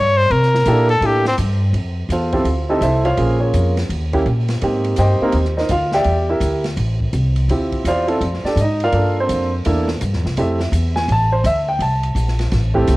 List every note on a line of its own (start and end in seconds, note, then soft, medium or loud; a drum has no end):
0.00 0.30 G2 loud
0.00 0.19 C#5 medium
0.17 0.33 C5 medium
0.30 0.65 C3 medium
0.30 0.90 A#4 medium
0.30 ride medium
0.43 snare soft
0.55 snare soft
0.65 1.00 A#2 medium
0.65 0.88 A#3 medium
0.65 0.88 D4 medium
0.65 0.88 E4 medium
0.65 0.88 G4 medium
0.65 0.88 A4 medium
0.65 hi-hat pedal medium
0.65 ride medium
0.89 1.07 A4 medium
0.89 ride soft
1.01 1.36 A2 medium
1.01 1.23 A#3 soft
1.01 1.23 D4 soft
1.01 1.24 E4 soft
1.01 1.23 G4 soft
1.01 1.23 A4 medium
1.01 ride medium
1.06 1.27 G4 medium
1.25 1.35 C4 medium
1.25 snare medium
1.38 1.72 G2 medium
1.38 hi-hat pedal medium
1.38 ride medium
1.73 2.08 F2 medium
1.73 ride medium
2.09 2.44 E2 medium
2.09 2.66 F4 medium
2.09 2.32 A4 medium
2.09 2.66 C5 medium
2.09 2.66 F5 medium
2.09 hi-hat pedal medium
2.09 ride medium
2.33 2.45 C4 medium
2.33 2.45 E4 medium
2.33 2.45 G4 medium
2.33 2.45 A4 medium
2.33 kick medium
2.33 ride soft
2.44 2.80 D2 medium
2.44 ride medium
2.69 2.81 C4 medium
2.69 2.83 D#4 medium
2.69 2.81 E4 medium
2.69 2.81 G4 medium
2.69 2.81 A4 medium
2.69 2.82 D#5 medium
2.81 3.16 C2 medium
2.81 3.05 E4 medium
2.81 3.06 A4 medium
2.81 3.04 C5 medium
2.81 3.05 E5 medium
2.81 hi-hat pedal medium
2.81 ride medium
3.05 3.17 F4 medium
3.05 3.39 C5 medium
3.05 3.39 C#5 medium
3.05 3.39 F5 medium
3.05 ride soft
3.17 3.53 A#1 medium
3.17 3.73 A#3 medium
3.17 3.39 C#4 medium
3.17 3.72 F4 medium
3.17 3.39 G#4 medium
3.17 ride medium
3.40 3.74 C#4 soft
3.40 3.74 G#4 medium
3.40 3.74 A#4 soft
3.40 3.74 C#5 medium
3.53 3.89 F2 medium
3.53 hi-hat pedal medium
3.53 ride medium
3.77 snare soft
3.77 ride soft
3.89 4.25 D#2 medium
3.89 ride medium
4.13 4.25 A#3 medium
4.13 4.25 C#4 medium
4.13 4.25 E4 medium
4.13 4.25 G4 medium
4.13 kick medium
4.13 ride soft
4.26 4.61 A#2 medium
4.26 hi-hat pedal medium
4.26 ride medium
4.48 snare medium
4.48 ride soft
4.61 4.97 G#2 medium
4.61 5.16 A#3 medium
4.61 5.17 C4 medium
4.61 5.17 D#4 medium
4.61 4.97 G4 medium
4.61 ride medium
4.84 ride soft
4.96 5.19 G2 medium
4.96 5.53 G4 medium
4.96 5.53 C5 medium
4.96 5.53 D#5 medium
4.96 5.53 G5 medium
4.96 hi-hat pedal medium
4.96 ride medium
5.21 5.33 A#3 medium
5.21 5.34 C4 medium
5.21 5.34 D#4 medium
5.21 5.34 A#4 medium
5.21 muted upright bass stroke soft
5.32 5.69 D#2 medium
5.32 ride medium
5.45 snare soft
5.57 5.70 D#4 medium
5.57 5.70 A#4 medium
5.57 5.70 C5 medium
5.57 5.70 D#5 medium
5.57 snare soft
5.69 6.04 D2 loud
5.69 5.93 F4 medium
5.69 5.93 F5 medium
5.69 hi-hat pedal soft
5.69 ride medium
5.92 6.27 G4 medium
5.92 6.27 D5 medium
5.92 6.27 E5 medium
5.92 6.27 G5 loud
5.92 snare medium
6.04 6.40 E2 medium
6.04 ride medium
6.29 6.63 E4 medium
6.29 6.63 G4 medium
6.29 6.63 A#4 medium
6.29 6.63 E5 medium
6.40 6.76 D2 medium
6.40 hi-hat pedal medium
6.40 ride medium
6.64 snare medium
6.64 ride soft
6.77 7.12 A1 medium
6.77 ride medium
7.00 kick medium
7.13 7.48 C2 medium
7.13 hi-hat pedal medium
7.13 ride medium
7.36 ride soft
7.48 7.84 D2 medium
7.48 8.04 C4 medium
7.48 8.05 E4 medium
7.48 7.87 F4 soft
7.48 8.05 G4 medium
7.48 ride medium
7.72 kick soft
7.72 ride soft
7.85 8.20 E2 medium
7.85 8.06 F4 medium
7.85 8.42 C5 medium
7.85 8.42 D5 medium
7.85 8.42 F5 medium
7.85 hi-hat pedal medium
7.85 ride medium
8.08 8.20 C4 medium
8.08 8.20 E4 medium
8.08 8.20 F4 medium
8.08 8.20 A4 medium
8.08 ride soft
8.21 8.43 F2 medium
8.21 ride medium
8.34 snare soft
8.44 8.58 D4 medium
8.44 8.58 G4 medium
8.44 8.58 A4 medium
8.44 8.57 D5 medium
8.44 muted upright bass stroke soft
8.44 snare soft
8.56 8.92 G#2 medium
8.56 hi-hat pedal soft
8.56 ride medium
8.61 8.82 D#4 medium
8.61 8.81 D#5 medium
8.80 8.92 F4 medium
8.80 9.16 D5 medium
8.80 9.16 F5 medium
8.80 ride soft
8.84 9.16 A#4 medium
8.92 9.28 G2 medium
8.92 9.48 A#3 soft
8.92 9.48 D4 soft
8.92 9.48 F4 soft
8.92 9.48 A4 medium
8.92 ride medium
9.20 9.53 C4 medium
9.20 9.52 C5 medium
9.29 9.64 F2 medium
9.29 hi-hat pedal medium
9.29 ride medium
9.65 10.01 E2 medium
9.65 9.86 A#3 medium
9.65 9.86 D4 medium
9.65 9.86 E4 medium
9.65 9.87 A4 medium
9.65 ride medium
9.88 snare medium
10.01 10.14 G2 medium
10.01 hi-hat pedal medium
10.01 ride medium
10.13 10.24 E2 medium
10.13 snare soft
10.25 10.36 C2 medium
10.25 snare soft
10.37 10.71 F2 medium
10.37 10.58 A3 medium
10.37 10.58 C4 medium
10.37 10.58 E4 medium
10.37 10.58 G4 medium
10.37 10.94 E5 medium
10.37 ride medium
10.60 snare medium
10.72 11.07 E2 medium
10.72 hi-hat pedal medium
10.72 ride medium
10.96 11.09 G#5 medium
10.96 snare medium
11.08 11.43 A1 loud
11.08 11.33 A5 loud
11.08 ride medium
11.33 11.45 C5 medium
11.44 11.79 D2 medium
11.44 11.68 E5 loud
11.44 hi-hat pedal medium
11.44 ride medium
11.69 11.81 G5 medium
11.79 12.14 C2 medium
11.79 12.85 A5 medium
11.79 ride medium
12.03 ride soft
12.15 12.50 A#1 medium
12.15 hi-hat pedal medium
12.15 ride medium
12.28 snare soft
12.39 snare soft
12.39 ride medium
12.52 12.87 A1 medium
12.52 snare soft
12.52 ride medium
12.74 12.97 A3 medium
12.74 12.97 C4 medium
12.74 12.97 E4 medium
12.74 12.97 G4 medium
12.74 kick medium
12.87 12.97 C2 loud
12.87 hi-hat pedal medium
12.87 ride medium